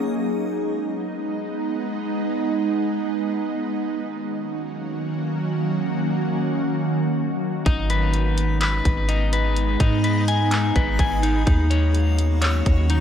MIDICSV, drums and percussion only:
0, 0, Header, 1, 2, 480
1, 0, Start_track
1, 0, Tempo, 476190
1, 41, Time_signature, 4, 2, 24, 8
1, 13107, End_track
2, 0, Start_track
2, 0, Title_t, "Drums"
2, 7721, Note_on_c, 9, 36, 127
2, 7721, Note_on_c, 9, 42, 68
2, 7822, Note_off_c, 9, 36, 0
2, 7822, Note_off_c, 9, 42, 0
2, 7961, Note_on_c, 9, 42, 71
2, 8062, Note_off_c, 9, 42, 0
2, 8200, Note_on_c, 9, 42, 77
2, 8301, Note_off_c, 9, 42, 0
2, 8443, Note_on_c, 9, 42, 68
2, 8544, Note_off_c, 9, 42, 0
2, 8678, Note_on_c, 9, 42, 94
2, 8688, Note_on_c, 9, 39, 123
2, 8779, Note_off_c, 9, 42, 0
2, 8788, Note_off_c, 9, 39, 0
2, 8923, Note_on_c, 9, 36, 90
2, 8924, Note_on_c, 9, 42, 68
2, 9024, Note_off_c, 9, 36, 0
2, 9024, Note_off_c, 9, 42, 0
2, 9159, Note_on_c, 9, 42, 82
2, 9260, Note_off_c, 9, 42, 0
2, 9403, Note_on_c, 9, 42, 79
2, 9503, Note_off_c, 9, 42, 0
2, 9641, Note_on_c, 9, 42, 67
2, 9742, Note_off_c, 9, 42, 0
2, 9879, Note_on_c, 9, 36, 111
2, 9881, Note_on_c, 9, 42, 74
2, 9980, Note_off_c, 9, 36, 0
2, 9982, Note_off_c, 9, 42, 0
2, 10120, Note_on_c, 9, 42, 76
2, 10221, Note_off_c, 9, 42, 0
2, 10362, Note_on_c, 9, 42, 69
2, 10463, Note_off_c, 9, 42, 0
2, 10598, Note_on_c, 9, 42, 97
2, 10607, Note_on_c, 9, 39, 127
2, 10699, Note_off_c, 9, 42, 0
2, 10708, Note_off_c, 9, 39, 0
2, 10842, Note_on_c, 9, 42, 69
2, 10843, Note_on_c, 9, 36, 93
2, 10943, Note_off_c, 9, 42, 0
2, 10944, Note_off_c, 9, 36, 0
2, 11079, Note_on_c, 9, 36, 86
2, 11079, Note_on_c, 9, 42, 79
2, 11179, Note_off_c, 9, 36, 0
2, 11180, Note_off_c, 9, 42, 0
2, 11323, Note_on_c, 9, 42, 82
2, 11424, Note_off_c, 9, 42, 0
2, 11560, Note_on_c, 9, 42, 69
2, 11561, Note_on_c, 9, 36, 125
2, 11661, Note_off_c, 9, 42, 0
2, 11662, Note_off_c, 9, 36, 0
2, 11801, Note_on_c, 9, 42, 74
2, 11902, Note_off_c, 9, 42, 0
2, 12041, Note_on_c, 9, 42, 75
2, 12142, Note_off_c, 9, 42, 0
2, 12282, Note_on_c, 9, 42, 67
2, 12383, Note_off_c, 9, 42, 0
2, 12518, Note_on_c, 9, 42, 99
2, 12527, Note_on_c, 9, 39, 126
2, 12618, Note_off_c, 9, 42, 0
2, 12628, Note_off_c, 9, 39, 0
2, 12763, Note_on_c, 9, 36, 91
2, 12763, Note_on_c, 9, 42, 67
2, 12863, Note_off_c, 9, 42, 0
2, 12864, Note_off_c, 9, 36, 0
2, 13000, Note_on_c, 9, 42, 83
2, 13100, Note_off_c, 9, 42, 0
2, 13107, End_track
0, 0, End_of_file